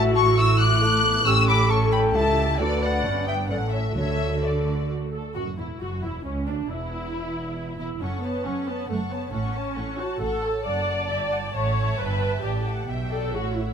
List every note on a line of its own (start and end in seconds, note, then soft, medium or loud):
0.00 1.23 A1 medium
0.00 1.23 A2 medium
0.00 0.79 E4 medium
0.00 0.37 F#4 medium
0.00 0.80 F#4 medium
0.00 0.13 E5 medium
0.15 0.21 A5 medium
0.15 0.37 C#6 loud
0.15 0.37 C#6 medium
0.37 0.81 E4 medium
0.37 0.59 C#6 loud
0.37 0.59 E6 loud
0.37 0.59 E6 medium
0.59 1.27 D6 loud
0.59 1.25 F#6 medium
0.59 1.25 F#6 loud
0.82 1.04 A3 medium
0.82 1.26 E4 medium
0.82 1.26 A4 medium
1.04 1.26 B3 medium
1.25 2.13 A1 medium
1.25 2.13 A2 medium
1.25 1.69 C#4 medium
1.25 1.71 G4 medium
1.25 2.13 A4 medium
1.25 1.50 C#6 medium
1.25 1.33 E6 medium
1.25 1.48 E6 loud
1.48 1.72 B5 medium
1.48 1.56 D6 medium
1.48 1.70 D6 loud
1.70 2.14 C#4 medium
1.70 2.42 A4 loud
1.70 1.94 A5 medium
1.70 1.78 C#6 medium
1.70 1.93 C#6 medium
1.92 2.17 G5 medium
1.92 2.00 B5 medium
1.92 2.01 B5 medium
2.14 2.60 C#2 medium
2.14 2.60 E4 medium
2.14 2.59 G4 medium
2.14 2.60 E5 medium
2.14 2.58 A5 medium
2.59 3.04 D2 medium
2.59 3.05 D2 medium
2.59 3.02 D4 medium
2.59 3.05 F#4 medium
2.59 2.84 A4 medium
2.59 3.48 B4 medium
2.59 2.82 D5 medium
2.59 2.82 D5 loud
2.82 3.27 D5 medium
2.82 3.26 F#5 medium
2.82 3.27 F#5 medium
3.04 3.50 G1 medium
3.04 3.50 G2 medium
3.04 3.27 C#4 medium
3.04 3.50 D4 medium
3.26 3.50 B3 medium
3.26 3.34 E5 medium
3.26 3.49 G5 medium
3.26 3.35 G5 medium
3.49 3.97 A1 medium
3.49 3.97 A2 medium
3.49 3.95 A3 soft
3.49 3.96 C#4 medium
3.49 3.94 A4 medium
3.49 3.57 D5 medium
3.49 3.72 F#5 medium
3.49 3.58 F#5 medium
3.72 3.79 C#5 medium
3.72 3.94 E5 medium
3.72 3.95 E5 medium
3.95 5.15 D2 medium
3.95 4.62 D3 medium
3.95 5.16 D3 medium
3.95 5.10 A3 soft
3.95 5.10 F#4 medium
3.95 5.10 A4 medium
3.95 4.45 C#5 medium
3.95 4.42 E5 medium
4.42 4.90 A4 soft
4.42 4.89 D5 soft
4.42 4.90 D5 medium
5.12 5.34 A4 medium
5.35 5.57 F#1 medium
5.35 5.57 F#2 medium
5.35 5.99 A2 soft
5.35 5.43 F#4 medium
5.35 5.44 F#4 medium
5.35 5.57 F#4 medium
5.58 5.66 E1 soft
5.58 5.67 E2 soft
5.58 5.66 E4 soft
5.58 5.80 E4 soft
5.58 5.81 E4 soft
5.80 6.03 F#1 soft
5.80 6.03 F#2 medium
5.80 6.02 F#4 soft
5.80 5.89 F#4 medium
5.80 6.03 F#4 soft
6.03 6.25 E1 soft
6.03 6.25 E2 soft
6.03 6.25 E4 soft
6.03 6.25 E4 medium
6.03 6.12 E4 soft
6.24 6.47 C#2 medium
6.24 6.32 C#4 medium
6.24 6.47 C#4 medium
6.47 6.70 D2 medium
6.47 6.70 D2 soft
6.47 6.69 D4 medium
6.47 6.55 D4 medium
6.47 6.70 D4 medium
6.69 7.77 E1 medium
6.69 7.77 E2 medium
6.69 7.78 E4 medium
6.69 7.77 E4 medium
6.69 7.78 E4 medium
7.79 7.87 E1 medium
7.79 7.87 E2 medium
7.79 7.87 E4 medium
7.79 8.01 E4 medium
7.79 7.87 E4 medium
8.01 8.38 F#1 medium
8.01 8.38 F#2 medium
8.01 8.23 C#4 medium
8.01 8.22 A4 soft
8.01 8.22 F#5 soft
8.01 8.22 C#6 soft
8.22 8.45 B3 medium
8.22 8.45 C#5 soft
8.22 8.45 A5 soft
8.22 8.46 A5 soft
8.44 8.82 F#1 medium
8.44 8.82 F#2 medium
8.44 8.67 C#4 medium
8.44 8.67 A4 soft
8.44 8.67 F#5 soft
8.44 8.68 C#6 soft
8.66 8.89 B3 medium
8.66 8.89 C#5 soft
8.66 8.89 A5 soft
8.89 9.26 F#1 medium
8.89 9.26 F#2 medium
8.89 8.97 A3 medium
8.89 9.09 A4 soft
8.89 9.09 F#5 soft
8.89 9.10 C#6 soft
9.11 9.33 B3 medium
9.11 9.33 C#5 medium
9.11 9.33 A5 soft
9.32 9.70 A1 medium
9.32 9.70 A2 medium
9.32 9.98 C#4 medium
9.32 9.53 A4 soft
9.32 9.53 F#5 soft
9.32 9.54 C#6 medium
9.54 9.77 C#5 soft
9.54 9.77 A5 soft
9.76 10.14 A1 medium
9.76 10.14 A2 medium
9.76 9.99 A4 soft
9.76 9.99 F#5 soft
9.76 9.99 C#6 soft
9.99 10.21 F#4 medium
9.99 10.21 C#5 soft
9.99 10.21 A5 soft
10.21 10.59 A1 medium
10.21 10.59 A2 medium
10.21 10.66 A4 medium
10.21 10.42 A4 soft
10.21 10.42 F#5 medium
10.21 10.42 C#6 soft
10.43 10.66 C#5 soft
10.43 10.65 A5 medium
10.43 10.66 A5 soft
10.66 11.08 F#1 medium
10.66 11.08 F#2 medium
10.66 11.53 D5 medium
10.66 11.07 F#5 medium
10.66 12.84 A5 medium
10.66 11.08 A5 medium
11.10 11.55 G1 medium
11.10 11.55 G2 medium
11.10 11.18 E5 soft
11.10 11.55 G5 soft
11.32 11.40 F#5 medium
11.55 11.98 A1 medium
11.55 11.99 A2 medium
11.55 11.98 C#5 medium
11.55 12.42 E5 medium
11.55 11.98 F#5 soft
11.99 12.43 G1 medium
11.99 12.43 G2 medium
11.99 12.44 B4 medium
11.99 12.44 G5 medium
12.43 12.87 A1 medium
12.43 12.88 A2 medium
12.43 12.66 G4 medium
12.43 12.66 D5 soft
12.43 12.87 E5 soft
12.65 12.88 F#5 soft
12.88 13.32 B1 medium
12.88 13.32 B2 medium
12.88 13.11 E5 soft
12.88 13.73 E5 soft
12.88 13.32 G5 medium
13.11 13.31 A4 medium
13.11 13.33 D5 medium
13.33 13.73 A1 medium
13.33 13.73 A2 medium
13.33 13.55 F#4 medium
13.33 13.73 C#5 soft
13.33 13.73 F#5 soft
13.55 13.73 E4 medium